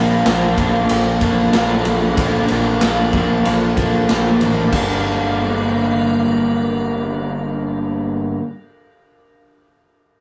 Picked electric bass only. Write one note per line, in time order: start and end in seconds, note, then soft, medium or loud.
0.00 0.22 A#1 medium
0.26 0.54 A#1 medium
0.57 0.86 A#1 medium
0.90 1.18 A#1 loud
1.22 1.50 A#1 medium
1.53 1.82 A#1 medium
1.85 2.14 A#1 medium
2.17 2.46 A#1 medium
2.51 2.79 A#1 medium
2.82 3.10 A#1 medium
3.13 3.42 A#1 medium
3.46 3.74 A#1 medium
3.76 4.05 A#1 medium
4.10 4.38 A#1 medium
4.41 4.69 A1 medium
4.72 8.35 G1 medium